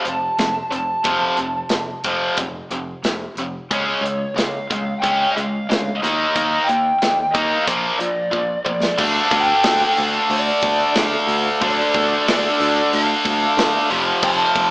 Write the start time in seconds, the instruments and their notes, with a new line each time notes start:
0.05 picked electric bass F1, distorted electric guitar F2 C3, lead electric guitar A5, closed hi-hat
0.38 picked electric bass F1, distorted electric guitar F2 C3, snare, closed hi-hat
0.71 picked electric bass F1, distorted electric guitar F2 C3, lead electric guitar A5, closed hi-hat
1.04 picked electric bass F1, distorted electric guitar F2 C3 F3, kick, closed hi-hat
1.37 picked electric bass F1, distorted electric guitar F2 C3, closed hi-hat
1.69 picked electric bass F1, distorted electric guitar F2 C3, snare, closed hi-hat
2.04 picked electric bass F1, distorted electric guitar F2 C3 F3, kick, closed hi-hat
2.37 picked electric bass F1, distorted electric guitar F2 C3, kick, closed hi-hat
2.70 picked electric bass F1, distorted electric guitar F2 C3, closed hi-hat
3.03 picked electric bass F1, distorted electric guitar F2 C3, snare, closed hi-hat
3.35 picked electric bass F1, distorted electric guitar F2 C3, closed hi-hat
3.71 picked electric bass C#2, distorted electric guitar C#3 G#3 C#4, lead electric guitar C#5, kick, closed hi-hat
4.01 picked electric bass C#2, distorted electric guitar C#3 G#3
4.06 closed hi-hat
4.34 picked electric bass C#2, distorted electric guitar C#3 G#3, lead electric guitar F5, closed hi-hat
4.39 snare
4.70 picked electric bass C#2, distorted electric guitar C#3 G#3, kick, closed hi-hat
5.00 picked electric bass C#2, distorted electric guitar C#3 G#3 C#4, lead electric guitar G5, kick
5.04 closed hi-hat
5.32 lead electric guitar F5
5.36 picked electric bass C#2, distorted electric guitar C#3 G#3, closed hi-hat
5.69 picked electric bass D2, distorted electric guitar C#3 G#3, snare, closed hi-hat
5.97 lead electric guitar D#5
6.02 picked electric bass D#2, distorted electric guitar D#3 A#3 D#4, snare, closed hi-hat
6.35 picked electric bass D#2, distorted electric guitar D#3 A#3 D#4, kick, closed hi-hat
6.64 lead electric guitar G5
6.69 picked electric bass D#2, distorted electric guitar D#3 A#3, closed hi-hat
7.02 picked electric bass D#2, distorted electric guitar D#3 A#3, snare, closed hi-hat
7.31 picked electric bass D#2, distorted electric guitar D#3 A#3 D#4, lead electric guitar D#5, kick, closed hi-hat
7.64 picked electric bass A#1, distorted electric guitar A#2 F3 A#3, lead electric guitar F5, kick
7.68 closed hi-hat
7.98 picked electric bass A#1, distorted electric guitar A#2 F3, lead electric guitar D5, closed hi-hat
8.31 picked electric bass A#1, distorted electric guitar A#2 F3, kick
8.65 picked electric bass A#1, distorted electric guitar A#2 F3, lead electric guitar D5, kick
8.83 snare
8.98 picked electric bass D2, distorted electric guitar D3 A3 D4, lead electric guitar F5, kick, crash
9.31 picked electric bass D2, lead electric guitar G5, kick, open hi-hat
9.63 picked electric bass D2, snare, open hi-hat
9.97 picked electric bass D2, lead electric guitar F5, open hi-hat
10.30 picked electric bass D2, lead electric guitar D5, open hi-hat
10.61 picked electric bass D2, kick, open hi-hat
10.95 picked electric bass D3, lead electric guitar F5, snare, open hi-hat
11.27 picked electric bass D2, open hi-hat
11.61 picked electric bass D2, distorted electric guitar D3 A3 D4, lead electric guitar D5, kick, open hi-hat
11.94 picked electric bass D2, kick, open hi-hat
12.28 picked electric bass D2, lead electric guitar D5, snare, open hi-hat
12.60 picked electric bass D2, open hi-hat
12.93 picked electric bass D2, lead electric guitar F5, open hi-hat
13.25 picked electric bass D2, kick, open hi-hat
13.57 picked electric bass D3, snare, open hi-hat
13.90 picked electric bass F1, distorted electric guitar F2 C3 F3, open hi-hat
14.22 picked electric bass F1, lead electric guitar A5, kick, crash
14.55 picked electric bass F1, kick, open hi-hat